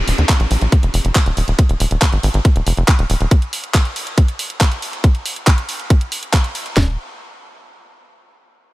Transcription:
0.08 0.14 D#1 loud
0.08 open hi-hat loud
0.18 0.24 D#2 medium
0.18 closed hi-hat soft
0.29 kick loud
0.29 clap loud
0.29 closed hi-hat loud
0.40 0.46 A#1 medium
0.40 closed hi-hat soft
0.51 0.57 A#1 loud
0.51 open hi-hat medium
0.61 0.68 A#1 medium
0.61 closed hi-hat soft
0.72 kick loud
0.72 closed hi-hat loud
0.83 0.89 F1 medium
0.83 closed hi-hat soft
0.94 1.00 F1 loud
0.94 open hi-hat loud
1.05 1.11 F1 medium
1.05 closed hi-hat soft
1.15 kick loud
1.15 clap loud
1.15 closed hi-hat loud
1.26 1.32 D#1 medium
1.26 closed hi-hat soft
1.37 1.43 D#1 loud
1.37 open hi-hat medium
1.48 1.54 D#1 medium
1.48 closed hi-hat soft
1.59 kick loud
1.59 closed hi-hat medium
1.69 1.76 D#1 medium
1.69 closed hi-hat soft
1.80 1.86 D#1 loud
1.80 open hi-hat loud
1.91 1.97 D#1 medium
1.91 closed hi-hat soft
2.02 kick loud
2.02 clap loud
2.02 closed hi-hat loud
2.13 2.19 G#1 medium
2.13 closed hi-hat soft
2.23 2.29 G#1 loud
2.23 open hi-hat loud
2.34 2.40 G#1 medium
2.34 closed hi-hat soft
2.45 kick loud
2.45 closed hi-hat medium
2.56 2.62 D#1 medium
2.56 closed hi-hat soft
2.67 2.73 F1 loud
2.67 open hi-hat loud
2.77 2.83 F1 medium
2.77 closed hi-hat soft
2.88 kick loud
2.88 clap loud
2.88 closed hi-hat loud
2.99 3.05 D#1 medium
2.99 closed hi-hat soft
3.10 3.16 D#1 medium
3.10 open hi-hat loud
3.21 3.27 D#1 medium
3.21 closed hi-hat soft
3.31 kick loud
3.31 closed hi-hat medium
3.42 closed hi-hat soft
3.53 open hi-hat loud
3.64 closed hi-hat soft
3.74 kick loud
3.74 clap loud
3.74 closed hi-hat medium
3.85 closed hi-hat soft
3.96 open hi-hat loud
4.07 closed hi-hat soft
4.18 kick loud
4.18 closed hi-hat medium
4.28 closed hi-hat soft
4.39 open hi-hat loud
4.50 closed hi-hat soft
4.61 kick loud
4.61 clap loud
4.61 closed hi-hat medium
4.72 closed hi-hat soft
4.82 open hi-hat medium
4.93 closed hi-hat soft
5.04 kick loud
5.04 closed hi-hat medium
5.15 closed hi-hat soft
5.26 open hi-hat loud
5.36 closed hi-hat soft
5.47 kick loud
5.47 clap loud
5.47 closed hi-hat medium
5.58 closed hi-hat soft
5.69 open hi-hat medium
5.79 closed hi-hat soft
5.90 kick loud
5.90 closed hi-hat medium
6.01 closed hi-hat soft
6.12 open hi-hat loud
6.23 closed hi-hat soft
6.33 kick loud
6.33 clap loud
6.33 closed hi-hat medium
6.44 closed hi-hat soft
6.55 open hi-hat loud
6.66 closed hi-hat soft
6.77 6.97 D#1 loud
6.77 kick loud
6.77 snare loud

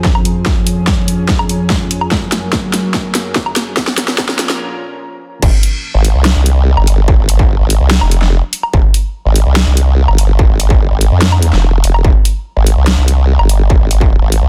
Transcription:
0.00 2.08 F2 medium
0.00 2.08 F3 medium
0.00 0.44 C4 medium
0.00 3.73 G#4 medium
0.05 kick loud
0.05 snare medium
0.15 low woodblock medium
0.25 closed hi-hat medium
0.46 2.10 C#4 medium
0.46 kick medium
0.46 snare medium
0.67 closed hi-hat medium
0.87 kick loud
0.87 snare medium
1.08 closed hi-hat medium
1.29 kick loud
1.29 snare medium
1.39 low woodblock medium
1.49 closed hi-hat medium
1.70 kick loud
1.70 snare medium
1.91 closed hi-hat medium
2.01 low woodblock medium
2.11 3.75 F#2 medium
2.11 3.75 F#3 medium
2.11 3.75 A#3 medium
2.11 kick loud
2.11 snare medium
2.32 snare medium
2.32 closed hi-hat medium
2.53 kick loud
2.53 snare medium
2.74 snare medium
2.74 closed hi-hat medium
2.94 kick loud
2.94 snare medium
3.15 snare medium
3.15 closed hi-hat medium
3.36 kick loud
3.36 snare medium
3.46 low woodblock medium
3.56 snare medium
3.56 closed hi-hat medium
3.77 5.41 A#2 medium
3.77 5.41 F3 medium
3.77 5.41 C#4 medium
3.77 5.41 A#4 medium
3.77 kick loud
3.77 snare medium
3.87 snare medium
3.98 snare medium
3.98 closed hi-hat medium
4.08 snare medium
4.18 kick loud
4.18 snare loud
4.29 snare medium
4.39 snare medium
4.39 closed hi-hat medium
4.50 snare medium
5.42 5.51 F1 loud
5.42 kick loud
5.42 crash loud
5.63 closed hi-hat medium
5.94 6.13 G#1 loud
6.05 closed hi-hat medium
6.15 6.34 C2 loud
6.25 snare loud
6.36 6.75 C2 loud
6.46 closed hi-hat medium
6.77 7.17 G1 loud
6.77 low woodblock medium
6.87 closed hi-hat medium
7.08 kick loud
7.19 7.58 G#1 loud
7.29 closed hi-hat medium
7.39 kick loud
7.60 7.79 G#1 loud
7.70 closed hi-hat medium
7.81 8.00 C2 medium
7.91 snare loud
8.01 8.41 F1 loud
8.01 low woodblock medium
8.11 closed hi-hat medium
8.22 snare soft
8.53 closed hi-hat medium
8.63 low woodblock medium
8.74 8.82 F1 loud
8.74 kick loud
8.94 closed hi-hat medium
9.25 9.44 G#1 loud
9.36 closed hi-hat medium
9.46 9.65 C2 loud
9.56 snare loud
9.67 10.07 C2 loud
9.77 closed hi-hat medium
10.08 10.48 G1 loud
10.08 low woodblock medium
10.18 closed hi-hat medium
10.39 kick loud
10.50 10.89 G#1 loud
10.60 closed hi-hat medium
10.70 kick loud
10.91 11.10 G#1 loud
11.01 closed hi-hat medium
11.12 11.51 F2 loud
11.22 snare loud
11.32 low woodblock medium
11.42 closed hi-hat medium
11.53 11.82 F1 loud
11.53 snare soft
11.84 12.03 F1 medium
11.84 closed hi-hat medium
11.94 low woodblock medium
12.05 12.13 F1 loud
12.05 kick loud
12.25 closed hi-hat medium
12.56 12.75 G#1 loud
12.67 closed hi-hat medium
12.77 12.96 C2 loud
12.87 snare loud
12.98 13.38 C2 loud
13.08 closed hi-hat medium
13.39 13.79 G1 loud
13.39 low woodblock medium
13.49 closed hi-hat medium
13.70 kick loud
13.81 14.20 G#1 medium
13.91 closed hi-hat medium
14.01 kick loud
14.22 14.41 G#1 loud
14.32 closed hi-hat medium
14.43 14.49 C2 loud

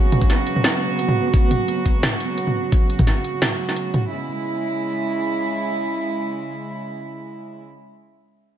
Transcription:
0.00 4.07 C#3 medium
0.00 4.07 F#3 medium
0.00 4.12 G#3 medium
0.00 4.13 B3 medium
0.00 4.09 F#4 medium
0.12 closed hi-hat medium
0.12 mid tom medium
0.22 kick medium
0.30 snare soft
0.30 closed hi-hat medium
0.47 closed hi-hat medium
0.56 mid tom soft
0.64 snare loud
0.64 closed hi-hat medium
0.99 closed hi-hat medium
1.08 mid tom medium
1.34 kick loud
1.34 closed hi-hat medium
1.51 closed hi-hat medium
1.51 mid tom medium
1.68 closed hi-hat medium
1.86 kick medium
1.86 closed hi-hat medium
2.03 snare loud
2.03 closed hi-hat medium
2.03 mid tom medium
2.20 closed hi-hat medium
2.38 closed hi-hat medium
2.47 mid tom soft
2.72 kick loud
2.72 closed hi-hat medium
2.90 closed hi-hat medium
2.99 kick medium
2.99 mid tom medium
3.07 snare soft
3.07 closed hi-hat medium
3.24 closed hi-hat medium
3.42 snare loud
3.42 closed hi-hat medium
3.42 mid tom medium
3.69 snare soft
3.76 closed hi-hat medium
3.94 closed hi-hat soft
3.94 mid tom medium
4.11 7.64 C#3 medium
4.11 7.64 G#3 medium
4.11 7.64 E4 medium

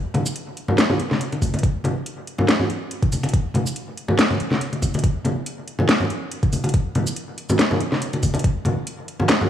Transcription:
0.14 closed hi-hat soft
0.14 high conga loud
0.14 low conga medium
0.26 shaker medium
0.36 closed hi-hat medium
0.57 closed hi-hat medium
0.68 muted conga soft
0.68 low conga medium
0.78 snare loud
0.78 closed hi-hat medium
0.78 shaker medium
0.90 high conga medium
0.90 low conga medium
1.00 closed hi-hat medium
1.11 snare soft
1.11 high conga medium
1.21 closed hi-hat medium
1.32 closed hi-hat soft
1.32 muted conga medium
1.42 kick medium
1.42 open hi-hat medium
1.42 high conga medium
1.42 shaker medium
1.54 closed hi-hat soft
1.54 muted conga medium
1.59 closed hi-hat medium
1.63 kick loud
1.63 closed hi-hat medium
1.84 closed hi-hat medium
1.84 high conga medium
1.84 low conga medium
2.06 closed hi-hat medium
2.27 closed hi-hat medium
2.38 muted conga soft
2.38 low conga loud
2.49 snare loud
2.49 closed hi-hat medium
2.59 low conga medium
2.70 closed hi-hat medium
2.91 closed hi-hat medium
3.03 kick loud
3.03 closed hi-hat soft
3.12 open hi-hat medium
3.12 high conga medium
3.12 shaker medium
3.23 closed hi-hat soft
3.23 muted conga medium
3.29 closed hi-hat medium
3.34 kick loud
3.34 closed hi-hat medium
3.54 closed hi-hat medium
3.54 high conga medium
3.54 low conga medium
3.66 shaker medium
3.76 closed hi-hat medium
3.97 closed hi-hat medium
4.08 muted conga medium
4.08 low conga medium
4.19 snare loud
4.19 closed hi-hat medium
4.19 shaker medium
4.30 high conga medium
4.30 low conga medium
4.40 closed hi-hat medium
4.51 snare soft
4.51 high conga medium
4.61 closed hi-hat medium
4.73 closed hi-hat soft
4.73 muted conga soft
4.82 kick medium
4.82 open hi-hat medium
4.82 high conga medium
4.82 shaker medium
4.94 closed hi-hat soft
4.94 muted conga medium
4.99 closed hi-hat medium
5.04 kick loud
5.04 closed hi-hat medium
5.25 closed hi-hat medium
5.25 high conga medium
5.25 low conga medium
5.46 closed hi-hat medium
5.68 closed hi-hat medium
5.79 muted conga medium
5.79 low conga medium
5.89 snare loud
5.89 closed hi-hat medium
6.00 low conga medium
6.10 closed hi-hat medium
6.31 closed hi-hat medium
6.43 kick loud
6.43 closed hi-hat soft
6.53 open hi-hat loud
6.53 high conga medium
6.53 shaker medium
6.64 closed hi-hat medium
6.64 muted conga medium
6.69 closed hi-hat medium
6.74 kick loud
6.74 closed hi-hat medium
6.95 closed hi-hat medium
6.95 high conga medium
6.95 low conga medium
7.07 closed hi-hat soft
7.07 shaker medium
7.16 closed hi-hat medium
7.38 closed hi-hat medium
7.49 muted conga medium
7.49 low conga medium
7.49 shaker medium
7.59 snare loud
7.59 closed hi-hat medium
7.59 shaker medium
7.71 high conga medium
7.71 low conga medium
7.80 closed hi-hat medium
7.92 snare soft
7.92 high conga medium
8.02 closed hi-hat medium
8.13 closed hi-hat soft
8.13 muted conga medium
8.23 kick medium
8.23 open hi-hat medium
8.23 high conga medium
8.23 shaker medium
8.34 closed hi-hat medium
8.34 muted conga medium
8.39 closed hi-hat medium
8.44 kick loud
8.44 closed hi-hat medium
8.65 closed hi-hat medium
8.65 high conga medium
8.65 low conga medium
8.87 closed hi-hat medium
9.08 closed hi-hat medium
9.20 muted conga medium
9.20 low conga medium
9.29 snare loud
9.29 clap medium
9.29 closed hi-hat medium
9.41 low conga loud

